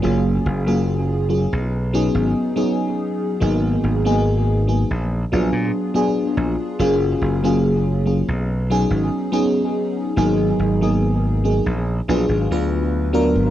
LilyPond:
<<
  \new Staff \with { instrumentName = "FM electric piano" } { \time 4/4 \key fis \major \tempo 4 = 71 <fis ais cis' eis' gis'>8. <fis ais cis' eis' gis'>8. <fis ais cis' eis' gis'>16 r8 <fis b cis' dis' gis'>8. <fis b cis' dis' gis'>4 | <fis ais b dis' gis'>8. <fis ais b dis' gis'>8. <fis ais b dis' gis'>16 r8 <fis b d' eis' gis'>8. <fis b d' eis' gis'>4 | <fis ais cis' eis' gis'>8. <fis ais cis' eis' gis'>8. <fis ais cis' eis' gis'>16 r8 <fis b cis' dis' gis'>8. <fis b cis' dis' gis'>4 | <fis ais b dis' gis'>8. <fis ais b dis' gis'>8. <fis ais b dis' gis'>16 r8 <fis b d' eis' gis'>8 <fis b d' eis' b'>8. <fis b d' eis' ais'>8 | }
  \new Staff \with { instrumentName = "Slap bass" } { \clef bass \time 4/4 \key fis \major fis,,8 fis,,4~ fis,,16 b,,8. gis,,16 r4 r16 | gis,,8 gis,,4~ gis,,16 ais,,8 ais,,16 ais,16 r8. ais,,16 r16 | fis,,8 fis,,4~ fis,,16 b,,8. gis,,16 r4 r16 | gis,,8 gis,,4~ gis,,16 ais,,8 ais,,16 gis,,16 d,4 gis,,16 | }
>>